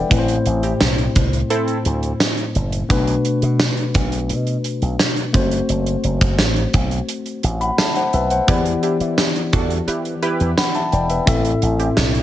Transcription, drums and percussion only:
0.11 kick, closed hi-hat
0.28 closed hi-hat
0.46 closed hi-hat
0.63 closed hi-hat
0.81 snare, tambourine
0.98 closed hi-hat
1.15 kick, closed hi-hat
1.33 closed hi-hat
1.50 closed hi-hat
1.68 closed hi-hat
1.85 closed hi-hat
2.03 closed hi-hat
2.20 snare, tambourine
2.37 closed hi-hat
2.55 closed hi-hat
2.72 closed hi-hat
2.90 kick, closed hi-hat
3.07 closed hi-hat
3.25 closed hi-hat
3.42 closed hi-hat
3.60 snare, tambourine
3.77 closed hi-hat
3.94 kick, closed hi-hat
4.12 closed hi-hat
4.29 closed hi-hat
4.47 closed hi-hat
4.64 closed hi-hat
4.82 closed hi-hat
4.99 snare, tambourine
5.16 closed hi-hat
5.34 kick, closed hi-hat
5.51 closed hi-hat
5.69 closed hi-hat
5.86 closed hi-hat
6.04 closed hi-hat
6.21 kick, closed hi-hat
6.39 snare, tambourine
6.56 closed hi-hat
6.73 kick, closed hi-hat
6.91 closed hi-hat
7.09 closed hi-hat
7.26 closed hi-hat
7.43 closed hi-hat
7.61 closed hi-hat
7.78 snare, tambourine
7.95 closed hi-hat
8.13 closed hi-hat
8.30 closed hi-hat
8.48 kick, closed hi-hat
8.65 closed hi-hat
8.83 closed hi-hat
9.00 closed hi-hat
9.18 snare, tambourine
9.36 closed hi-hat
9.53 kick, closed hi-hat
9.70 closed hi-hat
9.88 closed hi-hat
10.05 closed hi-hat
10.23 closed hi-hat
10.40 closed hi-hat
10.58 snare, tambourine
10.75 closed hi-hat
10.92 closed hi-hat
11.10 closed hi-hat
11.27 kick, closed hi-hat
11.45 closed hi-hat
11.62 closed hi-hat
11.80 closed hi-hat
11.97 snare, tambourine
12.15 closed hi-hat

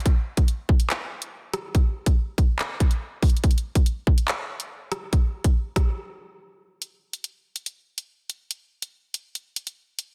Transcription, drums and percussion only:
0.00 closed hi-hat
0.06 kick, closed hi-hat
0.37 kick, closed hi-hat
0.48 closed hi-hat
0.69 kick
0.80 closed hi-hat
0.90 clap, closed hi-hat
1.22 closed hi-hat
1.54 cross-stick, closed hi-hat
1.75 kick, closed hi-hat
2.06 kick, closed hi-hat
2.38 kick, closed hi-hat
2.59 clap, closed hi-hat
2.80 kick, closed hi-hat
2.91 closed hi-hat
3.23 kick, closed hi-hat, open hi-hat
3.30 closed hi-hat
3.37 closed hi-hat
3.44 kick, closed hi-hat
3.51 closed hi-hat
3.58 closed hi-hat
3.75 kick, closed hi-hat
3.86 closed hi-hat
4.07 kick
4.18 closed hi-hat
4.28 clap, closed hi-hat
4.60 closed hi-hat
4.92 cross-stick, closed hi-hat
5.13 kick, closed hi-hat
5.44 kick, closed hi-hat
5.76 kick, cross-stick, closed hi-hat
6.82 closed hi-hat
7.13 closed hi-hat
7.24 closed hi-hat
7.56 closed hi-hat
7.66 closed hi-hat
7.98 closed hi-hat
8.30 closed hi-hat
8.51 closed hi-hat
8.82 closed hi-hat
9.14 closed hi-hat
9.35 closed hi-hat
9.56 closed hi-hat
9.67 closed hi-hat
9.99 closed hi-hat

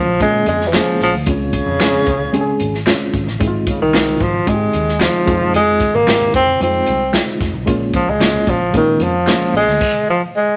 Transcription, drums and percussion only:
0.20 kick, closed hi-hat, tambourine
0.33 muted conga
0.46 closed hi-hat, tambourine, high conga
0.61 snare
0.73 snare, clap, closed hi-hat, tambourine, muted conga, high conga
0.86 muted conga
1.00 snare, open hi-hat, tambourine
1.26 kick, closed hi-hat, muted conga, low conga
1.52 kick, closed hi-hat, tambourine, high conga
1.79 snare, clap, closed hi-hat, tambourine, muted conga
1.93 high conga
2.06 kick, closed hi-hat, tambourine, low conga
2.34 closed hi-hat, tambourine
2.60 closed hi-hat, tambourine, high conga
2.74 snare
2.86 snare, clap, closed hi-hat, tambourine, high conga
3.00 muted conga
3.14 kick, closed hi-hat
3.27 snare
3.40 kick, closed hi-hat, tambourine, low conga
3.54 muted conga
3.66 kick, closed hi-hat, tambourine, high conga
3.94 snare, clap, closed hi-hat, tambourine, muted conga
4.07 high conga
4.20 kick, closed hi-hat, tambourine, low conga
4.47 kick, closed hi-hat, tambourine
4.61 muted conga
4.73 closed hi-hat, tambourine, high conga
4.88 snare
5.01 snare, clap, closed hi-hat, tambourine, muted conga, high conga
5.27 kick, closed hi-hat
5.54 closed hi-hat, low conga
5.80 kick, closed hi-hat, tambourine, high conga
6.08 snare, clap, closed hi-hat, tambourine
6.20 muted conga, high conga
6.33 kick, closed hi-hat, tambourine, low conga
6.61 closed hi-hat, tambourine, muted conga
6.74 muted conga
6.87 closed hi-hat, tambourine, high conga
7.14 snare, clap, closed hi-hat, tambourine, high conga
7.41 kick, snare, closed hi-hat, tambourine
7.67 kick, closed hi-hat, low conga
7.80 muted conga
7.93 kick, closed hi-hat, tambourine, high conga
8.20 snare, clap, closed hi-hat, tambourine, muted conga
8.33 muted conga, high conga
8.47 kick, closed hi-hat, tambourine, low conga
8.74 kick, closed hi-hat, tambourine
9.00 closed hi-hat, tambourine, high conga
9.27 snare, clap, closed hi-hat, tambourine, muted conga, high conga
9.41 muted conga
9.54 open hi-hat, tambourine
9.68 snare
9.81 kick, crash

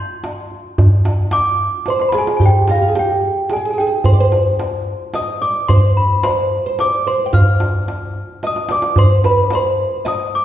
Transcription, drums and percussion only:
0.24 darbuka tek
0.52 darbuka ka
0.78 darbuka dum
1.05 darbuka tek
1.31 darbuka tek
1.86 darbuka tek
1.99 darbuka ka
2.12 darbuka tek
2.27 darbuka ka
2.40 darbuka dum
2.68 darbuka tek
2.95 darbuka tek
3.50 darbuka tek
4.04 darbuka dum
4.32 darbuka tek
4.59 darbuka tek
5.14 darbuka tek
5.69 darbuka dum
6.23 darbuka tek
6.79 darbuka tek
7.33 darbuka dum
7.47 darbuka ka
7.60 darbuka tek
7.88 darbuka tek
8.16 darbuka ka
8.43 darbuka tek
8.56 darbuka ka
8.69 darbuka tek
8.82 darbuka ka
8.96 darbuka dum
9.24 darbuka tek
9.50 darbuka tek
10.06 darbuka tek

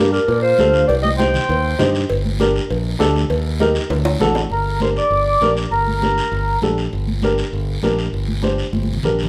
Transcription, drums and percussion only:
0.14 short guiro
0.28 cowbell, long guiro
0.59 high conga, short guiro
0.73 short guiro
0.89 cowbell, long guiro
1.05 high conga
1.19 high conga, short guiro
1.34 low conga, short guiro
1.50 cowbell, long guiro
1.79 high conga, low conga, short guiro
1.95 short guiro
2.10 cowbell, long guiro
2.25 high conga
2.40 high conga, short guiro
2.56 short guiro
2.71 cowbell, long guiro
3.00 high conga, low timbale, short guiro
3.16 short guiro
3.30 cowbell, long guiro
3.60 high conga, short guiro
3.75 short guiro
3.90 cowbell, high timbale, long guiro
4.05 high timbale
4.20 high conga, low conga, short guiro
4.35 low timbale, short guiro
4.50 long guiro
4.80 high conga, short guiro
4.96 short guiro
5.11 long guiro
5.42 high conga, short guiro
5.57 short guiro
5.72 long guiro
5.87 high conga
6.02 high conga, short guiro
6.18 short guiro
6.33 long guiro
6.62 high conga, short guiro
6.78 short guiro
6.93 long guiro
7.08 high conga
7.22 high conga, short guiro
7.38 short guiro
7.54 long guiro
7.83 high conga, short guiro
7.98 short guiro
8.14 long guiro
8.28 high conga
8.43 high conga, short guiro
8.58 short guiro
8.73 high conga, long guiro
8.83 high conga
8.93 low conga
9.03 low conga, short guiro
9.19 short guiro
9.23 low conga

